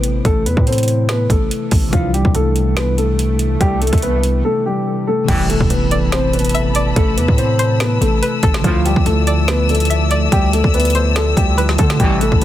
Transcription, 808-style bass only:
0.00 0.21 A1 loud
0.25 0.47 A1 loud
0.46 0.56 E2 loud
0.57 1.27 A2 loud
1.30 1.50 A1 loud
1.72 1.92 A1 loud
1.93 2.24 C2 loud
2.25 2.34 C2 loud
2.35 3.57 C2 loud
3.61 3.91 C2 loud
3.93 4.42 C2 loud
5.28 5.59 A1 loud
5.61 5.70 A1 loud
5.70 6.92 A1 loud
6.96 7.19 A1 loud
7.17 7.28 E2 loud
7.28 7.98 A2 loud
8.01 8.21 A1 loud
8.43 8.63 A1 loud
8.64 8.95 D2 loud
8.96 9.05 D2 loud
9.06 10.28 D2 loud
10.32 10.63 D2 loud
10.64 11.34 D2 loud
11.37 11.77 D2 loud
11.79 11.99 D3 loud
12.00 12.31 A1 loud
12.32 12.41 A1 loud

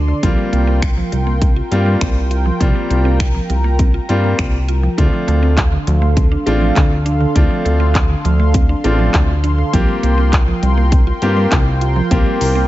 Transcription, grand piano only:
0.23 0.82 G3 medium
0.23 0.82 A#3 medium
0.23 0.82 C4 medium
0.23 0.82 F4 loud
1.71 2.16 G3 medium
1.71 2.16 A#3 medium
1.71 2.16 C4 medium
1.71 2.16 F4 medium
2.60 3.19 G3 medium
2.60 3.19 A#3 medium
2.60 3.20 C4 medium
2.60 3.20 F4 medium
4.09 4.53 G3 medium
4.09 4.53 A#3 medium
4.09 4.53 C4 medium
4.09 4.53 F4 loud
4.98 5.57 A3 medium
4.98 5.57 C4 medium
4.98 5.57 D4 medium
4.98 5.57 F4 loud
6.46 6.91 A3 medium
6.46 6.91 C4 medium
6.46 6.91 D4 medium
6.46 6.91 F4 loud
7.35 7.95 A3 medium
7.35 7.95 C4 medium
7.35 7.95 D4 medium
7.35 7.95 F4 loud
8.84 9.28 A3 medium
8.84 9.29 C4 medium
8.84 9.29 D4 medium
8.84 9.29 F4 loud
9.73 10.32 A#3 medium
9.73 10.32 C4 medium
9.73 10.32 F4 medium
9.73 10.33 G4 loud
11.22 11.66 A#3 medium
11.22 11.66 C4 medium
11.22 11.66 F4 medium
11.22 11.66 G4 loud
12.11 12.68 A#3 medium
12.11 12.68 C4 medium
12.11 12.68 F4 medium
12.11 12.68 G4 medium

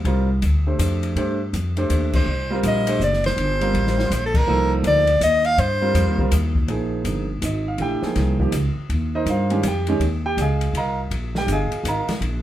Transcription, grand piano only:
0.06 0.27 G3 medium
0.06 0.27 C4 medium
0.06 0.27 F4 medium
0.06 0.27 A#4 medium
0.67 1.14 A3 soft
0.67 1.14 D4 soft
0.67 1.14 G4 soft
0.67 1.14 C5 medium
1.16 1.37 A3 medium
1.16 1.37 D4 medium
1.16 1.38 G4 medium
1.16 1.38 C5 medium
1.77 2.24 A3 medium
1.77 2.25 D4 medium
1.77 2.25 G4 medium
1.77 2.25 C5 medium
2.50 2.85 G3 medium
2.50 2.85 C4 medium
2.50 2.85 F4 medium
2.50 2.86 A#4 medium
2.87 2.99 A3 medium
2.87 3.00 D4 medium
2.87 3.00 G4 medium
2.87 3.00 C5 medium
3.61 3.95 G3 medium
3.61 3.95 C4 medium
3.61 3.96 F4 medium
3.61 3.96 A#4 medium
3.97 4.10 G3 medium
3.97 4.10 C4 medium
3.97 4.10 F4 medium
3.97 4.11 C5 medium
4.48 5.03 F3 medium
4.48 5.04 A#3 medium
4.48 5.04 D#4 medium
4.48 5.04 A4 medium
5.82 6.16 G3 medium
5.82 6.16 C4 medium
5.82 6.16 F4 medium
5.82 6.17 A#4 medium
6.18 6.31 G3 medium
6.18 6.31 C4 medium
6.18 6.31 F4 medium
6.18 6.31 A#4 medium
6.68 7.24 F3 medium
6.68 7.24 A#3 medium
6.68 7.25 D#4 medium
6.68 7.25 G#4 medium
7.45 7.66 D#5 medium
7.68 7.80 F5 medium
7.80 8.00 E3 medium
7.80 8.01 A3 medium
7.80 8.01 D4 medium
7.80 8.01 G4 medium
7.80 8.37 G5 medium
8.02 8.35 F3 medium
8.02 8.35 A#3 medium
8.02 8.35 D#4 soft
8.02 8.36 G#4 medium
8.40 8.52 F3 medium
8.40 8.52 A#3 medium
8.40 8.52 D#4 medium
8.40 8.53 G4 medium
9.15 9.28 D#4 medium
9.15 9.28 A#4 medium
9.15 9.28 C5 medium
9.15 9.27 D#5 medium
9.30 9.63 F4 medium
9.30 9.63 A#4 medium
9.30 9.63 C5 medium
9.30 9.63 F5 medium
9.50 9.62 D#3 medium
9.50 9.62 G#3 medium
9.50 9.63 C#4 medium
9.50 9.63 G4 medium
9.68 9.88 G4 medium
9.68 9.88 G5 medium
9.88 10.00 D#3 medium
9.88 10.00 G#3 medium
9.88 10.00 C#4 medium
9.88 10.01 G4 medium
10.26 10.38 G4 medium
10.26 10.38 G5 medium
10.41 10.74 G#4 medium
10.41 10.74 D#5 medium
10.41 10.74 F5 medium
10.41 10.74 G#5 medium
10.77 10.99 A#4 medium
10.77 10.99 D#5 medium
10.77 10.99 F5 medium
10.77 10.98 A#5 medium
11.38 11.50 G4 medium
11.38 11.49 G5 medium
11.52 11.85 G#4 medium
11.52 11.85 D#5 medium
11.52 11.85 F5 medium
11.52 11.85 G#5 medium
11.88 12.10 A#4 medium
11.88 12.10 D#5 medium
11.88 12.10 F5 medium
11.88 12.09 A#5 medium

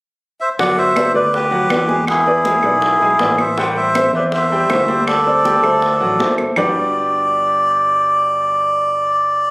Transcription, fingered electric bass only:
0.59 1.11 G1 medium
1.14 1.67 D2 medium
1.71 2.58 E2 medium
2.64 2.99 B1 medium
3.01 3.19 B1 medium
3.20 4.08 A1 medium
4.13 4.66 E2 medium
4.69 5.58 D2 medium
5.63 5.98 D2 medium
6.01 6.19 A1 medium
6.20 6.53 G1 medium
6.57 9.51 G1 medium

